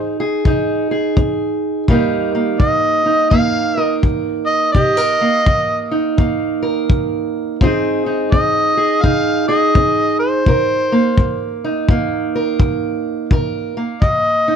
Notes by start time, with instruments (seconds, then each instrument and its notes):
Already playing: steel-string acoustic guitar C4 D#4 G#4, harmonica C5
0.20 steel-string acoustic guitar G#4
0.45 steel-string acoustic guitar C3 D#4, kick
0.91 steel-string acoustic guitar G#4
1.17 steel-string acoustic guitar C4, kick
1.88 steel-string acoustic guitar C3 G3 A#3 D#4 A#4, kick
2.35 steel-string acoustic guitar A#3
2.60 steel-string acoustic guitar G3, harmonica D#5, kick
3.06 steel-string acoustic guitar D#4
3.30 steel-string acoustic guitar G2 A#3, harmonica F5, kick
3.77 steel-string acoustic guitar A#4, harmonica D#5
4.03 steel-string acoustic guitar G3, kick
4.46 harmonica D#5
4.72 steel-string acoustic guitar C3 G4, harmonica D#5, kick
4.97 steel-string acoustic guitar A#4
5.21 steel-string acoustic guitar A#3
5.46 steel-string acoustic guitar G3, kick
5.91 steel-string acoustic guitar D#4
6.17 steel-string acoustic guitar G2 A#3, kick
6.63 steel-string acoustic guitar A#4
6.90 steel-string acoustic guitar G3, kick
7.61 steel-string acoustic guitar F3 C4 D#4 G#4, kick
8.06 steel-string acoustic guitar D#4
8.32 steel-string acoustic guitar C4, harmonica D#5, kick
8.77 steel-string acoustic guitar G#4
9.01 steel-string acoustic guitar C3 D#4, harmonica F5, kick
9.48 steel-string acoustic guitar G#4, harmonica D#5
9.75 steel-string acoustic guitar C4, kick
10.19 harmonica C5
10.46 steel-string acoustic guitar C3 A#4, kick
10.92 steel-string acoustic guitar A#3
11.18 steel-string acoustic guitar G3, kick
11.64 steel-string acoustic guitar D#4
11.89 steel-string acoustic guitar G2 A#3, kick
12.36 steel-string acoustic guitar A#4
12.60 steel-string acoustic guitar G3, kick
13.31 steel-string acoustic guitar C3 A#4, kick
13.77 steel-string acoustic guitar A#3
14.02 steel-string acoustic guitar G3, harmonica D#5, kick
14.48 steel-string acoustic guitar D#4